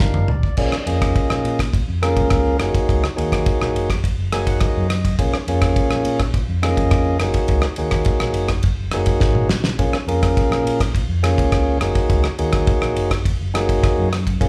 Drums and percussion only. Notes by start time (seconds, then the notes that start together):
0.00 kick, snare
0.14 mid tom
0.28 floor tom
0.43 kick
0.57 kick, crash
0.72 cross-stick
0.87 ride
1.02 kick, cross-stick, ride
1.16 kick, ride
1.30 cross-stick
1.45 ride
1.59 kick, cross-stick, ride
1.74 kick, ride
2.03 cross-stick, ride
2.17 kick, ride
2.30 kick, cross-stick, ride
2.60 cross-stick, ride
2.75 kick, ride
2.89 kick, ride
3.04 cross-stick
3.18 ride
3.32 kick, cross-stick, ride
3.46 kick, ride
3.62 cross-stick
3.76 ride
3.90 kick, cross-stick, ride
4.04 kick, ride
4.32 cross-stick, ride
4.47 kick, ride
4.61 kick, cross-stick, ride
4.90 cross-stick, ride
5.05 kick, ride
5.19 kick, ride
5.34 cross-stick
5.48 ride
5.62 kick, cross-stick, ride
5.76 kick, ride
5.91 cross-stick
6.05 ride
6.20 kick, cross-stick, ride
6.34 kick, ride
6.63 cross-stick, ride
6.77 kick, ride
6.91 kick, cross-stick, ride
7.20 cross-stick, ride
7.34 kick, ride
7.48 kick, ride
7.62 cross-stick
7.76 ride
7.91 kick, cross-stick, ride
8.05 kick, ride
8.20 cross-stick
8.34 ride
8.49 kick, cross-stick, ride
8.63 kick, ride
8.91 cross-stick, ride
9.06 kick, ride
9.20 kick, snare
9.35 mid tom
9.49 snare
9.64 snare
9.79 kick, ride
9.93 cross-stick
10.08 ride
10.23 kick, cross-stick, ride
10.37 kick, ride
10.52 cross-stick
10.67 ride
10.80 kick, cross-stick, ride
10.95 kick, ride
11.24 cross-stick, ride
11.38 kick, ride
11.52 kick, cross-stick, ride
11.81 cross-stick, ride
11.95 kick, ride
12.10 kick, ride
12.24 cross-stick
12.39 ride
12.53 kick, cross-stick, ride
12.67 kick, ride
12.82 cross-stick
12.96 ride
13.11 kick, cross-stick, ride
13.25 kick, ride
13.55 cross-stick, ride
13.69 kick, ride
13.84 kick, cross-stick, ride
14.13 cross-stick, ride
14.27 kick, ride
14.41 kick, ride